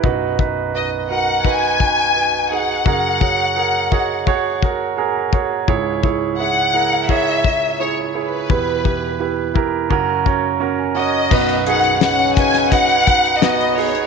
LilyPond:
<<
  \new Staff \with { instrumentName = "Violin section" } { \time 4/4 \key b \major \tempo 4 = 85 r4 dis''8 fis''8 gis''4. fis''8~ | fis''2~ fis''8 r4. | r4 fis''4 e''4 cis''8 b'8~ | b'4. r2 dis''8~ |
dis''8 fis''8 fis''8 gis''8 fis''4 dis''8 cis''8 | }
  \new Staff \with { instrumentName = "Grand piano" } { \time 4/4 \key b \major << { r1 | r4. dis''8 fis''4 gis''16 ais''8. | r1 | r2. ais''16 gis''16 fis''8 |
r1 | } \\ { <dis' fis' b'>8 <dis' fis' b'>8 <dis' fis' b'>8 <dis' fis' ais'>8 <dis' fis' b'>8 <dis' fis' b'>8 <dis' fis' b'>8 <dis' fis' gis'>8 | <fis' gis' ais'>8 <fis' gis' cis''>8 <fis' gis' ais'>8 <fis' gis' cis''>8 <fis' gis' cis''>8 <fis' gis' ais'>8 <fis' gis' ais'>8 <fis' gis' cis''>8 | <e' gis' cis''>8 <e' gis' cis''>8 <e' gis' e''>8 <e' gis' ais'>8 <e' gis' cis''>8 <e' gis' cis''>8 <e' gis' cis''>8 <e' gis' cis''>8 | <e' g' b'>8 <e' g' b'>8 <e' g' b'>8 <e' g' ais'>8 <cis' fis' ais'>8 <cis' fis' cis''>8 <cis' fis' ais'>8 <cis' fis' cis''>8 |
<dis' fis' b'>8 <dis' fis' gis'>8 <dis' fis' b'>8 <dis' fis' b'>8 <dis' fis' b'>8 <dis' fis' b'>8 <dis' fis' b'>8 <dis' fis' gis'>8 | } >> }
  \new Staff \with { instrumentName = "Grand piano" } { \clef bass \time 4/4 \key b \major <b,, fis,>1 | <fis, cis>1 | <cis, gis,>1 | <e, b,>2 <fis, cis>2 |
<b,, fis,>1 | }
  \new Staff \with { instrumentName = "French horn section" } { \clef bass \time 4/4 \key b \major r1 | r1 | r1 | r1 |
<b, b>8 <dis dis'>8 <cis cis'>4. r8 <b, b>8. r16 | }
  \new DrumStaff \with { instrumentName = "Drums" } \drummode { \time 4/4 bd8 bd8 r4 bd8 bd8 r4 | bd8 bd8 r8 bd8 bd8 bd8 r8 bd8 | bd8 bd8 r4 bd8 bd8 r4 | bd8 bd8 r8 bd8 bd8 bd8 r4 |
<cymc bd>16 hh16 hh16 hh16 <hh sn>8 <hh bd>16 <hh sn>16 <hh bd>16 hh16 <hh bd>16 hh16 <hh sn>16 hh16 hho16 hh16 | }
>>